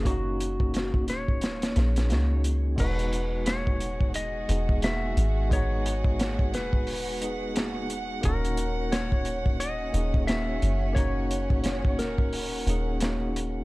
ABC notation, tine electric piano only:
X:1
M:4/4
L:1/16
Q:"Swing 16ths" 1/4=88
K:Fblyd
V:1 name="Tine electric piano"
[B,DEG]8- [B,DEG]2 [B,DEA]2 [B,DEG] z3 | [^G,=B,^D^F]8- [G,B,DF]2 [G,B,D^G]2 [G,B,DF] z3 | [^G,=B,^D^F]8- [G,B,DF]2 [G,B,D^G]2 [G,B,DF] z3 | [B,DEG]8- [B,DEG]2 [B,DEA]2 [B,DEG] z3 |
[B,DEG]8- [B,DEG]2 [B,DEA]2 [B,DEG] z3 |]